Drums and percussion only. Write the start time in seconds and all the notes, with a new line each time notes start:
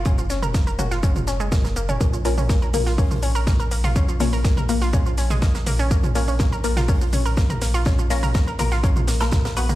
0.05 kick, closed hi-hat, mid tom, shaker
0.18 shaker
0.30 snare, closed hi-hat, shaker
0.43 mid tom, shaker
0.54 kick, snare, closed hi-hat, shaker
0.67 shaker
0.79 closed hi-hat, mid tom, shaker
0.91 snare, shaker
1.03 kick, closed hi-hat, shaker
1.16 mid tom, shaker
1.27 snare, closed hi-hat, shaker
1.40 shaker
1.52 kick, snare, closed hi-hat, mid tom, shaker
1.64 snare, shaker
1.76 closed hi-hat, shaker
1.89 mid tom, shaker
2.01 kick, closed hi-hat, mid tom, shaker
2.13 closed hi-hat, shaker
2.25 snare, closed hi-hat, open hi-hat, shaker
2.38 mid tom, shaker
2.49 kick, snare, closed hi-hat, shaker
2.62 shaker
2.74 closed hi-hat, open hi-hat, mid tom, shaker
2.86 snare, shaker
2.98 kick, open hi-hat, shaker
3.11 mid tom, shaker
3.23 closed hi-hat, open hi-hat, shaker
3.35 shaker
3.47 kick, snare, closed hi-hat, mid tom, shaker
3.59 closed hi-hat, shaker
3.71 closed hi-hat, open hi-hat, shaker
3.84 closed hi-hat, mid tom, shaker
3.96 kick, closed hi-hat, shaker
4.08 shaker
4.20 snare, closed hi-hat, open hi-hat, mid tom, shaker
4.33 shaker
4.44 kick, snare, closed hi-hat, shaker
4.57 mid tom, shaker
4.69 closed hi-hat, open hi-hat, shaker
4.81 snare, shaker
4.93 kick, closed hi-hat, mid tom, shaker
5.06 shaker
5.17 snare, closed hi-hat, open hi-hat, shaker
5.30 mid tom, shaker
5.42 kick, snare, closed hi-hat, shaker
5.55 snare, shaker
5.66 closed hi-hat, open hi-hat, mid tom, shaker
5.79 shaker
5.91 kick, closed hi-hat, shaker
6.03 closed hi-hat, mid tom, shaker
6.15 snare, closed hi-hat, open hi-hat, shaker
6.28 shaker
6.39 kick, snare, closed hi-hat, mid tom, shaker
6.52 shaker
6.64 closed hi-hat, open hi-hat, shaker
6.77 snare, mid tom, shaker
6.88 kick, open hi-hat, shaker
7.01 shaker
7.13 closed hi-hat, open hi-hat, mid tom, shaker
7.25 shaker
7.37 kick, snare, closed hi-hat, shaker
7.50 closed hi-hat, mid tom, shaker
7.62 snare, closed hi-hat, open hi-hat, shaker
7.74 closed hi-hat, shaker
7.85 kick, snare, closed hi-hat, mid tom, shaker
7.99 shaker
8.10 snare, closed hi-hat, open hi-hat, shaker
8.23 mid tom, shaker
8.34 kick, snare, closed hi-hat, shaker
8.47 shaker
8.59 closed hi-hat, open hi-hat, mid tom, shaker
8.72 snare, shaker
8.84 kick, closed hi-hat, shaker
8.96 mid tom, shaker
9.07 snare, closed hi-hat, open hi-hat, shaker
9.20 snare, closed hi-hat, shaker
9.31 kick, snare, closed hi-hat, mid tom, shaker
9.45 snare, closed hi-hat, shaker
9.57 closed hi-hat, open hi-hat, shaker
9.69 mid tom, shaker